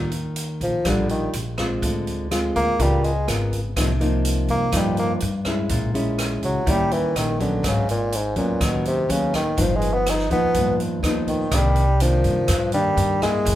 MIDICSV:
0, 0, Header, 1, 5, 480
1, 0, Start_track
1, 0, Tempo, 484653
1, 1807, Time_signature, 4, 2, 24, 8
1, 13422, End_track
2, 0, Start_track
2, 0, Title_t, "Nylon-string guitar"
2, 0, Program_c, 0, 24
2, 0, Note_on_c, 0, 51, 53
2, 828, Note_off_c, 0, 51, 0
2, 849, Note_on_c, 0, 46, 55
2, 853, Note_on_c, 0, 62, 55
2, 854, Note_on_c, 0, 55, 57
2, 859, Note_on_c, 0, 65, 59
2, 1327, Note_off_c, 0, 55, 0
2, 1328, Note_off_c, 0, 62, 0
2, 1331, Note_off_c, 0, 65, 0
2, 1564, Note_on_c, 0, 56, 55
2, 1574, Note_on_c, 0, 60, 52
2, 1577, Note_on_c, 0, 65, 64
2, 1785, Note_off_c, 0, 46, 0
2, 1808, Note_on_c, 0, 50, 51
2, 2248, Note_off_c, 0, 56, 0
2, 2253, Note_off_c, 0, 60, 0
2, 2254, Note_off_c, 0, 65, 0
2, 2289, Note_on_c, 0, 56, 52
2, 2294, Note_on_c, 0, 60, 49
2, 2296, Note_on_c, 0, 65, 60
2, 2745, Note_off_c, 0, 50, 0
2, 2750, Note_off_c, 0, 56, 0
2, 2752, Note_off_c, 0, 60, 0
2, 2753, Note_off_c, 0, 65, 0
2, 2765, Note_on_c, 0, 59, 54
2, 2770, Note_on_c, 0, 49, 56
2, 2772, Note_on_c, 0, 70, 62
2, 2775, Note_on_c, 0, 65, 51
2, 3076, Note_off_c, 0, 59, 0
2, 3079, Note_off_c, 0, 70, 0
2, 3081, Note_off_c, 0, 65, 0
2, 3244, Note_on_c, 0, 59, 50
2, 3248, Note_on_c, 0, 65, 51
2, 3252, Note_on_c, 0, 70, 57
2, 3556, Note_off_c, 0, 59, 0
2, 3558, Note_off_c, 0, 65, 0
2, 3560, Note_off_c, 0, 70, 0
2, 3707, Note_off_c, 0, 49, 0
2, 3729, Note_on_c, 0, 48, 52
2, 3731, Note_on_c, 0, 53, 52
2, 3736, Note_on_c, 0, 58, 61
2, 3741, Note_on_c, 0, 63, 59
2, 3871, Note_off_c, 0, 53, 0
2, 3875, Note_off_c, 0, 58, 0
2, 3876, Note_off_c, 0, 63, 0
2, 3961, Note_on_c, 0, 53, 54
2, 3967, Note_on_c, 0, 58, 59
2, 3971, Note_on_c, 0, 63, 67
2, 4648, Note_off_c, 0, 53, 0
2, 4651, Note_off_c, 0, 58, 0
2, 4653, Note_off_c, 0, 63, 0
2, 4667, Note_off_c, 0, 48, 0
2, 4673, Note_on_c, 0, 43, 53
2, 4679, Note_on_c, 0, 53, 55
2, 4682, Note_on_c, 0, 58, 52
2, 4686, Note_on_c, 0, 63, 63
2, 5162, Note_off_c, 0, 53, 0
2, 5165, Note_off_c, 0, 58, 0
2, 5165, Note_off_c, 0, 63, 0
2, 5409, Note_on_c, 0, 56, 52
2, 5418, Note_on_c, 0, 61, 51
2, 5422, Note_on_c, 0, 64, 58
2, 5619, Note_off_c, 0, 43, 0
2, 5642, Note_on_c, 0, 46, 55
2, 5852, Note_off_c, 0, 56, 0
2, 5856, Note_off_c, 0, 61, 0
2, 5859, Note_off_c, 0, 64, 0
2, 5886, Note_on_c, 0, 56, 55
2, 5889, Note_on_c, 0, 61, 54
2, 5893, Note_on_c, 0, 64, 64
2, 6571, Note_off_c, 0, 56, 0
2, 6571, Note_off_c, 0, 61, 0
2, 6575, Note_off_c, 0, 64, 0
2, 6583, Note_off_c, 0, 46, 0
2, 6600, Note_on_c, 0, 51, 57
2, 6603, Note_on_c, 0, 55, 50
2, 6606, Note_on_c, 0, 61, 56
2, 6612, Note_on_c, 0, 64, 57
2, 7287, Note_off_c, 0, 55, 0
2, 7291, Note_off_c, 0, 61, 0
2, 7293, Note_off_c, 0, 64, 0
2, 7328, Note_on_c, 0, 54, 57
2, 7334, Note_on_c, 0, 59, 47
2, 7334, Note_on_c, 0, 61, 57
2, 7543, Note_off_c, 0, 51, 0
2, 7558, Note_on_c, 0, 44, 52
2, 7773, Note_off_c, 0, 54, 0
2, 7774, Note_off_c, 0, 59, 0
2, 7775, Note_off_c, 0, 61, 0
2, 8278, Note_on_c, 0, 54, 50
2, 8282, Note_on_c, 0, 59, 51
2, 8285, Note_on_c, 0, 61, 59
2, 8501, Note_off_c, 0, 44, 0
2, 8524, Note_on_c, 0, 51, 57
2, 8967, Note_off_c, 0, 54, 0
2, 8967, Note_off_c, 0, 59, 0
2, 8970, Note_off_c, 0, 61, 0
2, 9000, Note_on_c, 0, 54, 58
2, 9000, Note_on_c, 0, 59, 50
2, 9005, Note_on_c, 0, 61, 56
2, 9315, Note_off_c, 0, 59, 0
2, 9316, Note_off_c, 0, 54, 0
2, 9317, Note_off_c, 0, 61, 0
2, 9464, Note_off_c, 0, 51, 0
2, 9477, Note_on_c, 0, 43, 56
2, 9480, Note_on_c, 0, 53, 55
2, 9484, Note_on_c, 0, 59, 51
2, 9491, Note_on_c, 0, 63, 56
2, 10166, Note_off_c, 0, 53, 0
2, 10169, Note_off_c, 0, 59, 0
2, 10173, Note_off_c, 0, 63, 0
2, 10207, Note_on_c, 0, 53, 60
2, 10211, Note_on_c, 0, 59, 56
2, 10216, Note_on_c, 0, 63, 64
2, 10421, Note_off_c, 0, 43, 0
2, 10448, Note_on_c, 0, 43, 57
2, 10892, Note_off_c, 0, 53, 0
2, 10892, Note_off_c, 0, 59, 0
2, 10893, Note_off_c, 0, 63, 0
2, 10938, Note_on_c, 0, 53, 50
2, 10944, Note_on_c, 0, 59, 52
2, 10947, Note_on_c, 0, 63, 58
2, 11376, Note_off_c, 0, 53, 0
2, 11378, Note_off_c, 0, 59, 0
2, 11380, Note_off_c, 0, 63, 0
2, 11385, Note_off_c, 0, 43, 0
2, 11405, Note_on_c, 0, 48, 52
2, 11406, Note_on_c, 0, 51, 59
2, 11415, Note_on_c, 0, 58, 54
2, 11417, Note_on_c, 0, 62, 62
2, 11717, Note_off_c, 0, 51, 0
2, 11719, Note_off_c, 0, 58, 0
2, 11723, Note_off_c, 0, 62, 0
2, 11895, Note_on_c, 0, 51, 55
2, 11899, Note_on_c, 0, 58, 53
2, 11904, Note_on_c, 0, 62, 63
2, 12345, Note_off_c, 0, 48, 0
2, 12370, Note_off_c, 0, 51, 0
2, 12370, Note_off_c, 0, 58, 0
2, 12373, Note_on_c, 0, 43, 51
2, 12374, Note_off_c, 0, 62, 0
2, 12614, Note_on_c, 0, 51, 57
2, 12620, Note_on_c, 0, 58, 54
2, 12623, Note_on_c, 0, 62, 66
2, 13054, Note_off_c, 0, 51, 0
2, 13057, Note_off_c, 0, 58, 0
2, 13057, Note_off_c, 0, 62, 0
2, 13091, Note_on_c, 0, 58, 53
2, 13098, Note_on_c, 0, 64, 55
2, 13104, Note_on_c, 0, 68, 61
2, 13308, Note_off_c, 0, 43, 0
2, 13323, Note_on_c, 0, 54, 58
2, 13422, Note_off_c, 0, 54, 0
2, 13422, Note_off_c, 0, 58, 0
2, 13422, Note_off_c, 0, 64, 0
2, 13422, Note_off_c, 0, 68, 0
2, 13422, End_track
3, 0, Start_track
3, 0, Title_t, "Bassoon"
3, 0, Program_c, 1, 70
3, 623, Note_on_c, 1, 53, 74
3, 877, Note_on_c, 1, 50, 67
3, 892, Note_off_c, 1, 53, 0
3, 1087, Note_off_c, 1, 50, 0
3, 1093, Note_on_c, 1, 51, 70
3, 1313, Note_off_c, 1, 51, 0
3, 2536, Note_on_c, 1, 58, 101
3, 2792, Note_on_c, 1, 55, 78
3, 2807, Note_off_c, 1, 58, 0
3, 3011, Note_on_c, 1, 56, 78
3, 3025, Note_off_c, 1, 55, 0
3, 3250, Note_off_c, 1, 56, 0
3, 4464, Note_on_c, 1, 58, 97
3, 4724, Note_on_c, 1, 55, 70
3, 4738, Note_off_c, 1, 58, 0
3, 4940, Note_off_c, 1, 55, 0
3, 4946, Note_on_c, 1, 58, 87
3, 5086, Note_off_c, 1, 58, 0
3, 6386, Note_on_c, 1, 54, 82
3, 6642, Note_on_c, 1, 55, 89
3, 6657, Note_off_c, 1, 54, 0
3, 6860, Note_on_c, 1, 52, 84
3, 6875, Note_off_c, 1, 55, 0
3, 7103, Note_on_c, 1, 51, 73
3, 7118, Note_off_c, 1, 52, 0
3, 7333, Note_off_c, 1, 51, 0
3, 7339, Note_on_c, 1, 50, 71
3, 7608, Note_on_c, 1, 49, 80
3, 7623, Note_off_c, 1, 50, 0
3, 7825, Note_off_c, 1, 49, 0
3, 7831, Note_on_c, 1, 46, 79
3, 8078, Note_on_c, 1, 44, 68
3, 8093, Note_off_c, 1, 46, 0
3, 8290, Note_off_c, 1, 44, 0
3, 8296, Note_on_c, 1, 46, 73
3, 8564, Note_on_c, 1, 47, 64
3, 8579, Note_off_c, 1, 46, 0
3, 8783, Note_off_c, 1, 47, 0
3, 8789, Note_on_c, 1, 48, 83
3, 9031, Note_on_c, 1, 49, 75
3, 9046, Note_off_c, 1, 48, 0
3, 9256, Note_off_c, 1, 49, 0
3, 9262, Note_on_c, 1, 51, 80
3, 9513, Note_on_c, 1, 53, 80
3, 9528, Note_off_c, 1, 51, 0
3, 9673, Note_on_c, 1, 56, 91
3, 9688, Note_off_c, 1, 53, 0
3, 9845, Note_on_c, 1, 59, 87
3, 9860, Note_off_c, 1, 56, 0
3, 10002, Note_on_c, 1, 63, 92
3, 10017, Note_off_c, 1, 59, 0
3, 10219, Note_off_c, 1, 63, 0
3, 10225, Note_on_c, 1, 59, 92
3, 10665, Note_off_c, 1, 59, 0
3, 11177, Note_on_c, 1, 51, 77
3, 11431, Note_on_c, 1, 55, 90
3, 11446, Note_off_c, 1, 51, 0
3, 11907, Note_on_c, 1, 53, 73
3, 11921, Note_off_c, 1, 55, 0
3, 12611, Note_off_c, 1, 53, 0
3, 12617, Note_on_c, 1, 55, 84
3, 13060, Note_off_c, 1, 55, 0
3, 13099, Note_on_c, 1, 56, 92
3, 13422, Note_off_c, 1, 56, 0
3, 13422, End_track
4, 0, Start_track
4, 0, Title_t, "Upright bass"
4, 0, Program_c, 2, 32
4, 0, Note_on_c, 2, 39, 83
4, 564, Note_off_c, 2, 39, 0
4, 601, Note_on_c, 2, 34, 79
4, 715, Note_off_c, 2, 34, 0
4, 848, Note_on_c, 2, 34, 94
4, 1294, Note_off_c, 2, 34, 0
4, 1328, Note_on_c, 2, 34, 91
4, 1774, Note_off_c, 2, 34, 0
4, 1804, Note_on_c, 2, 38, 90
4, 2487, Note_off_c, 2, 38, 0
4, 2532, Note_on_c, 2, 38, 87
4, 2642, Note_off_c, 2, 38, 0
4, 2767, Note_on_c, 2, 37, 91
4, 3215, Note_off_c, 2, 37, 0
4, 3245, Note_on_c, 2, 32, 84
4, 3694, Note_off_c, 2, 32, 0
4, 3728, Note_on_c, 2, 36, 83
4, 4410, Note_off_c, 2, 36, 0
4, 4444, Note_on_c, 2, 43, 80
4, 4559, Note_off_c, 2, 43, 0
4, 4683, Note_on_c, 2, 43, 82
4, 5134, Note_off_c, 2, 43, 0
4, 5170, Note_on_c, 2, 43, 91
4, 5617, Note_off_c, 2, 43, 0
4, 5644, Note_on_c, 2, 34, 77
4, 6329, Note_off_c, 2, 34, 0
4, 6364, Note_on_c, 2, 37, 72
4, 6479, Note_off_c, 2, 37, 0
4, 6603, Note_on_c, 2, 39, 92
4, 7054, Note_off_c, 2, 39, 0
4, 7089, Note_on_c, 2, 34, 86
4, 7537, Note_off_c, 2, 34, 0
4, 7568, Note_on_c, 2, 32, 78
4, 8251, Note_off_c, 2, 32, 0
4, 8279, Note_on_c, 2, 39, 78
4, 8397, Note_off_c, 2, 39, 0
4, 8524, Note_on_c, 2, 39, 87
4, 8974, Note_off_c, 2, 39, 0
4, 9007, Note_on_c, 2, 39, 91
4, 9455, Note_off_c, 2, 39, 0
4, 9487, Note_on_c, 2, 31, 81
4, 10169, Note_off_c, 2, 31, 0
4, 10202, Note_on_c, 2, 39, 80
4, 10318, Note_off_c, 2, 39, 0
4, 10443, Note_on_c, 2, 39, 86
4, 10893, Note_off_c, 2, 39, 0
4, 10920, Note_on_c, 2, 39, 89
4, 11372, Note_off_c, 2, 39, 0
4, 11405, Note_on_c, 2, 36, 91
4, 12088, Note_off_c, 2, 36, 0
4, 12126, Note_on_c, 2, 43, 82
4, 12240, Note_off_c, 2, 43, 0
4, 12364, Note_on_c, 2, 43, 90
4, 12813, Note_off_c, 2, 43, 0
4, 12845, Note_on_c, 2, 43, 99
4, 13294, Note_off_c, 2, 43, 0
4, 13325, Note_on_c, 2, 30, 84
4, 13422, Note_off_c, 2, 30, 0
4, 13422, End_track
5, 0, Start_track
5, 0, Title_t, "Drums"
5, 114, Note_on_c, 9, 42, 28
5, 213, Note_off_c, 9, 42, 0
5, 355, Note_on_c, 9, 42, 44
5, 454, Note_off_c, 9, 42, 0
5, 604, Note_on_c, 9, 36, 20
5, 604, Note_on_c, 9, 42, 26
5, 703, Note_off_c, 9, 36, 0
5, 703, Note_off_c, 9, 42, 0
5, 840, Note_on_c, 9, 37, 56
5, 840, Note_on_c, 9, 42, 37
5, 845, Note_on_c, 9, 36, 59
5, 939, Note_off_c, 9, 37, 0
5, 939, Note_off_c, 9, 42, 0
5, 944, Note_off_c, 9, 36, 0
5, 1082, Note_on_c, 9, 42, 23
5, 1181, Note_off_c, 9, 42, 0
5, 1321, Note_on_c, 9, 42, 40
5, 1420, Note_off_c, 9, 42, 0
5, 1562, Note_on_c, 9, 37, 61
5, 1562, Note_on_c, 9, 42, 24
5, 1565, Note_on_c, 9, 36, 23
5, 1661, Note_off_c, 9, 37, 0
5, 1661, Note_off_c, 9, 42, 0
5, 1664, Note_off_c, 9, 36, 0
5, 1806, Note_on_c, 9, 36, 60
5, 1809, Note_on_c, 9, 42, 40
5, 1905, Note_off_c, 9, 36, 0
5, 1908, Note_off_c, 9, 42, 0
5, 2051, Note_on_c, 9, 42, 24
5, 2150, Note_off_c, 9, 42, 0
5, 2291, Note_on_c, 9, 37, 59
5, 2291, Note_on_c, 9, 42, 37
5, 2390, Note_off_c, 9, 37, 0
5, 2390, Note_off_c, 9, 42, 0
5, 2529, Note_on_c, 9, 36, 22
5, 2533, Note_on_c, 9, 42, 25
5, 2628, Note_off_c, 9, 36, 0
5, 2632, Note_off_c, 9, 42, 0
5, 2768, Note_on_c, 9, 36, 56
5, 2768, Note_on_c, 9, 42, 42
5, 2867, Note_off_c, 9, 36, 0
5, 2868, Note_off_c, 9, 42, 0
5, 3012, Note_on_c, 9, 42, 25
5, 3111, Note_off_c, 9, 42, 0
5, 3250, Note_on_c, 9, 37, 58
5, 3250, Note_on_c, 9, 42, 38
5, 3349, Note_off_c, 9, 37, 0
5, 3349, Note_off_c, 9, 42, 0
5, 3488, Note_on_c, 9, 36, 22
5, 3492, Note_on_c, 9, 42, 26
5, 3587, Note_off_c, 9, 36, 0
5, 3591, Note_off_c, 9, 42, 0
5, 3728, Note_on_c, 9, 36, 58
5, 3729, Note_on_c, 9, 37, 62
5, 3729, Note_on_c, 9, 42, 43
5, 3827, Note_off_c, 9, 36, 0
5, 3828, Note_off_c, 9, 37, 0
5, 3828, Note_off_c, 9, 42, 0
5, 3970, Note_on_c, 9, 42, 28
5, 4069, Note_off_c, 9, 42, 0
5, 4206, Note_on_c, 9, 42, 48
5, 4305, Note_off_c, 9, 42, 0
5, 4440, Note_on_c, 9, 42, 25
5, 4444, Note_on_c, 9, 36, 21
5, 4539, Note_off_c, 9, 42, 0
5, 4543, Note_off_c, 9, 36, 0
5, 4678, Note_on_c, 9, 37, 59
5, 4678, Note_on_c, 9, 42, 44
5, 4682, Note_on_c, 9, 36, 52
5, 4777, Note_off_c, 9, 37, 0
5, 4777, Note_off_c, 9, 42, 0
5, 4781, Note_off_c, 9, 36, 0
5, 4922, Note_on_c, 9, 42, 25
5, 5021, Note_off_c, 9, 42, 0
5, 5154, Note_on_c, 9, 42, 42
5, 5253, Note_off_c, 9, 42, 0
5, 5396, Note_on_c, 9, 37, 56
5, 5396, Note_on_c, 9, 42, 25
5, 5402, Note_on_c, 9, 36, 24
5, 5496, Note_off_c, 9, 37, 0
5, 5496, Note_off_c, 9, 42, 0
5, 5501, Note_off_c, 9, 36, 0
5, 5638, Note_on_c, 9, 42, 41
5, 5644, Note_on_c, 9, 36, 62
5, 5737, Note_off_c, 9, 42, 0
5, 5743, Note_off_c, 9, 36, 0
5, 5892, Note_on_c, 9, 42, 25
5, 5991, Note_off_c, 9, 42, 0
5, 6126, Note_on_c, 9, 37, 58
5, 6126, Note_on_c, 9, 42, 38
5, 6225, Note_off_c, 9, 37, 0
5, 6225, Note_off_c, 9, 42, 0
5, 6364, Note_on_c, 9, 42, 24
5, 6365, Note_on_c, 9, 36, 20
5, 6463, Note_off_c, 9, 42, 0
5, 6464, Note_off_c, 9, 36, 0
5, 6605, Note_on_c, 9, 36, 59
5, 6606, Note_on_c, 9, 42, 39
5, 6704, Note_off_c, 9, 36, 0
5, 6705, Note_off_c, 9, 42, 0
5, 6848, Note_on_c, 9, 42, 27
5, 6947, Note_off_c, 9, 42, 0
5, 7089, Note_on_c, 9, 37, 49
5, 7089, Note_on_c, 9, 42, 41
5, 7188, Note_off_c, 9, 37, 0
5, 7188, Note_off_c, 9, 42, 0
5, 7327, Note_on_c, 9, 36, 24
5, 7332, Note_on_c, 9, 42, 25
5, 7426, Note_off_c, 9, 36, 0
5, 7431, Note_off_c, 9, 42, 0
5, 7566, Note_on_c, 9, 36, 54
5, 7567, Note_on_c, 9, 37, 56
5, 7567, Note_on_c, 9, 42, 44
5, 7665, Note_off_c, 9, 36, 0
5, 7666, Note_off_c, 9, 37, 0
5, 7666, Note_off_c, 9, 42, 0
5, 7812, Note_on_c, 9, 42, 27
5, 7911, Note_off_c, 9, 42, 0
5, 8046, Note_on_c, 9, 42, 45
5, 8145, Note_off_c, 9, 42, 0
5, 8278, Note_on_c, 9, 42, 27
5, 8283, Note_on_c, 9, 36, 22
5, 8377, Note_off_c, 9, 42, 0
5, 8382, Note_off_c, 9, 36, 0
5, 8524, Note_on_c, 9, 36, 61
5, 8525, Note_on_c, 9, 37, 59
5, 8525, Note_on_c, 9, 42, 43
5, 8623, Note_off_c, 9, 36, 0
5, 8624, Note_off_c, 9, 37, 0
5, 8624, Note_off_c, 9, 42, 0
5, 8769, Note_on_c, 9, 42, 26
5, 8868, Note_off_c, 9, 42, 0
5, 9009, Note_on_c, 9, 42, 42
5, 9108, Note_off_c, 9, 42, 0
5, 9245, Note_on_c, 9, 36, 25
5, 9248, Note_on_c, 9, 37, 54
5, 9248, Note_on_c, 9, 42, 28
5, 9344, Note_off_c, 9, 36, 0
5, 9347, Note_off_c, 9, 37, 0
5, 9347, Note_off_c, 9, 42, 0
5, 9483, Note_on_c, 9, 42, 43
5, 9484, Note_on_c, 9, 36, 64
5, 9582, Note_off_c, 9, 42, 0
5, 9583, Note_off_c, 9, 36, 0
5, 9721, Note_on_c, 9, 42, 26
5, 9820, Note_off_c, 9, 42, 0
5, 9967, Note_on_c, 9, 37, 60
5, 9967, Note_on_c, 9, 42, 41
5, 10066, Note_off_c, 9, 37, 0
5, 10066, Note_off_c, 9, 42, 0
5, 10205, Note_on_c, 9, 36, 24
5, 10208, Note_on_c, 9, 42, 22
5, 10304, Note_off_c, 9, 36, 0
5, 10307, Note_off_c, 9, 42, 0
5, 10443, Note_on_c, 9, 42, 43
5, 10445, Note_on_c, 9, 36, 57
5, 10542, Note_off_c, 9, 42, 0
5, 10544, Note_off_c, 9, 36, 0
5, 10695, Note_on_c, 9, 42, 26
5, 10794, Note_off_c, 9, 42, 0
5, 10929, Note_on_c, 9, 37, 57
5, 10929, Note_on_c, 9, 42, 42
5, 11028, Note_off_c, 9, 37, 0
5, 11028, Note_off_c, 9, 42, 0
5, 11165, Note_on_c, 9, 36, 25
5, 11168, Note_on_c, 9, 42, 25
5, 11264, Note_off_c, 9, 36, 0
5, 11267, Note_off_c, 9, 42, 0
5, 11404, Note_on_c, 9, 37, 60
5, 11404, Note_on_c, 9, 42, 46
5, 11405, Note_on_c, 9, 36, 63
5, 11503, Note_off_c, 9, 37, 0
5, 11503, Note_off_c, 9, 42, 0
5, 11504, Note_off_c, 9, 36, 0
5, 11643, Note_on_c, 9, 42, 28
5, 11742, Note_off_c, 9, 42, 0
5, 11885, Note_on_c, 9, 42, 45
5, 11985, Note_off_c, 9, 42, 0
5, 12123, Note_on_c, 9, 42, 26
5, 12124, Note_on_c, 9, 36, 22
5, 12222, Note_off_c, 9, 42, 0
5, 12224, Note_off_c, 9, 36, 0
5, 12358, Note_on_c, 9, 37, 60
5, 12358, Note_on_c, 9, 42, 45
5, 12363, Note_on_c, 9, 36, 61
5, 12457, Note_off_c, 9, 37, 0
5, 12457, Note_off_c, 9, 42, 0
5, 12462, Note_off_c, 9, 36, 0
5, 12597, Note_on_c, 9, 42, 30
5, 12696, Note_off_c, 9, 42, 0
5, 12849, Note_on_c, 9, 42, 41
5, 12948, Note_off_c, 9, 42, 0
5, 13088, Note_on_c, 9, 36, 24
5, 13092, Note_on_c, 9, 37, 54
5, 13092, Note_on_c, 9, 42, 26
5, 13187, Note_off_c, 9, 36, 0
5, 13191, Note_off_c, 9, 37, 0
5, 13191, Note_off_c, 9, 42, 0
5, 13329, Note_on_c, 9, 36, 58
5, 13333, Note_on_c, 9, 42, 46
5, 13422, Note_off_c, 9, 36, 0
5, 13422, Note_off_c, 9, 42, 0
5, 13422, End_track
0, 0, End_of_file